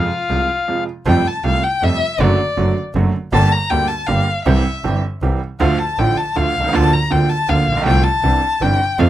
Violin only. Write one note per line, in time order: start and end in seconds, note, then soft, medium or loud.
0.00 0.83 F4 medium
1.08 1.29 G5 medium
1.27 1.45 A5 medium
1.46 1.66 F5 medium
1.64 1.85 G5 medium
1.83 2.22 E5 loud
2.21 2.77 D5 medium
3.33 3.53 A5 loud
3.52 3.71 A#5 loud
3.70 3.89 G5 loud
3.87 4.09 A5 medium
4.07 4.44 F5 medium
4.45 4.98 E5 medium
5.60 5.80 F5 medium
5.79 6.00 A5 medium
5.98 6.19 G5 medium
6.17 6.38 A5 medium
6.37 6.77 F5 medium
6.75 6.95 A5 loud
6.93 7.13 A#5 medium
7.11 7.31 G5 medium
7.29 7.51 A5 medium
7.49 7.86 F5 medium
7.86 8.05 G5 loud
8.04 8.63 A5 loud
8.62 9.00 G5 loud
8.99 9.10 F5 medium